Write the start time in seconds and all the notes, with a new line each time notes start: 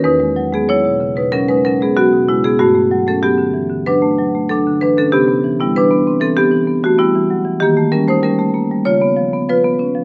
0.04 E2 D#4 B4
0.20 G#3
0.36 F#3
0.53 G#3 B3 G#4
0.69 F#3 E4 C#5
0.84 B2
1.00 C#3
1.16 B2 D#4 B4
1.32 F#3 C#4 A#4
1.48 G#3 D#4 B4
1.65 F#3 C#4 A#4
1.81 G#3 B3 G#4
1.96 F#3 B3 F#4
2.12 B2
2.29 C#3 G#3 E4
2.44 B2 B3 G#4
2.59 G2 A3 F#4
2.75 A3
2.91 F#3
3.07 A3 C#4 A4
3.23 F#3 B3 G4
3.38 D3
3.54 E3
3.70 D3
3.86 F#3 D4 B4
4.02 A3
4.19 F#3
4.35 A3
4.49 F#3 D4 A4
4.67 D3
4.81 E3 D4 B4
4.97 D3 C#4 A4
5.12 C3 B3 G4
5.28 B3
5.44 E3
5.60 G3 B3 E4
5.76 E3 D4 B4
5.91 B3
6.07 C4
6.20 E3 C4 A4
6.37 B3 G4
6.52 E3
6.67 B3
6.83 E3 A3 F#4
6.98 G3 B3 E4
7.15 E3
7.30 F#3
7.45 E3
7.60 D#3 A#3 G4
7.77 A3
7.92 G3 C#4 A#4
8.08 A3 D#4 C5
8.23 G3 C#4 A#4
8.39 A3
8.54 A#3
8.71 G3
8.85 C#3 F4 C#5
9.02 B3
9.17 F3
9.33 B3
9.49 F3 F4 B4
9.64 B3
9.79 C#4
9.95 F3